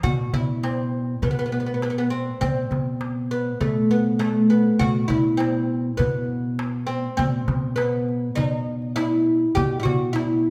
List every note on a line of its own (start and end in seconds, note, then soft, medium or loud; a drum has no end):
0.03 0.30 B2 loud
0.03 0.31 F#4 medium
0.03 darbuka dum medium
0.34 1.13 B2 medium
0.34 0.64 E4 medium
0.34 darbuka dum medium
0.63 1.22 C4 medium
0.63 darbuka tek medium
1.22 2.28 B2 medium
1.22 1.30 B3 medium
1.22 darbuka dum medium
1.31 1.38 B3 soft
1.39 1.44 B3 medium
1.46 1.51 B3 soft
1.52 1.59 B3 medium
1.60 1.65 B3 soft
1.66 1.73 B3 soft
1.74 1.82 B3 soft
1.82 1.89 B3 medium
1.82 darbuka tek medium
1.90 1.97 B3 soft
1.98 2.06 B3 medium
2.10 2.40 C4 medium
2.41 2.68 B2 medium
2.41 3.31 C4 medium
2.41 darbuka dum medium
2.71 3.51 B2 medium
2.71 darbuka dum medium
3.01 darbuka tek medium
3.31 3.60 B3 medium
3.60 4.67 B2 medium
3.60 3.90 A3 medium
3.60 darbuka dum medium
3.91 4.19 B3 medium
4.19 4.48 A3 medium
4.19 darbuka tek medium
4.50 4.81 B3 medium
4.79 5.07 B2 medium
4.79 5.08 F#4 loud
4.79 darbuka dum medium
5.08 5.89 B2 medium
5.08 5.40 E4 medium
5.08 darbuka dum medium
5.37 5.97 C4 medium
5.37 darbuka tek medium
5.97 7.05 B2 medium
5.97 6.90 B3 medium
5.97 darbuka dum medium
6.59 darbuka tek medium
6.87 7.16 C4 medium
7.17 7.45 B2 medium
7.17 7.75 C4 medium
7.17 darbuka dum medium
7.33 darbuka ka soft
7.48 8.27 B2 medium
7.48 darbuka dum medium
7.76 8.38 B3 medium
7.76 darbuka tek medium
7.94 darbuka ka soft
8.08 darbuka ka soft
8.35 9.43 B2 medium
8.35 8.95 D#4 medium
8.35 darbuka dum medium
8.53 darbuka ka soft
8.82 darbuka ka soft
8.96 9.55 E4 medium
8.96 darbuka tek medium
9.55 9.83 B2 medium
9.55 9.79 G4 medium
9.55 darbuka dum medium
9.80 9.83 E4 medium
9.80 10.13 F#4 medium
9.85 10.50 B2 medium
9.85 darbuka dum medium
10.13 10.50 E4 medium
10.13 darbuka tek medium